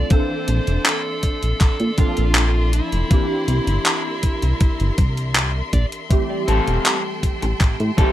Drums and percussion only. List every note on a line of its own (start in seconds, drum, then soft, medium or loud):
0.10 kick loud
0.10 closed hi-hat medium
0.48 closed hi-hat medium
0.67 closed hi-hat soft
0.85 clap loud
0.85 closed hi-hat medium
1.23 kick medium
1.23 closed hi-hat medium
1.43 closed hi-hat medium
1.61 kick loud
1.61 clap medium
1.61 closed hi-hat medium
1.80 closed hi-hat soft
1.98 kick loud
1.98 closed hi-hat medium
2.17 closed hi-hat medium
2.35 clap loud
2.35 closed hi-hat medium
2.73 closed hi-hat medium
2.92 closed hi-hat soft
3.11 kick loud
3.11 closed hi-hat medium
3.48 closed hi-hat medium
3.67 closed hi-hat medium
3.86 clap loud
3.86 closed hi-hat medium
4.23 kick medium
4.23 closed hi-hat medium
4.42 closed hi-hat medium
4.61 kick loud
4.61 closed hi-hat medium
4.80 closed hi-hat soft
4.98 kick loud
4.98 closed hi-hat medium
5.17 closed hi-hat soft
5.35 clap loud
5.35 closed hi-hat medium
5.73 kick medium
5.73 closed hi-hat medium
5.92 closed hi-hat medium
6.11 kick loud
6.11 closed hi-hat medium
6.48 closed hi-hat medium
6.67 closed hi-hat soft
6.86 clap loud
6.86 closed hi-hat medium
7.23 kick medium
7.23 closed hi-hat medium
7.42 closed hi-hat soft
7.61 kick loud
7.61 clap medium
7.61 closed hi-hat medium
7.80 closed hi-hat soft
7.98 kick loud
7.98 closed hi-hat medium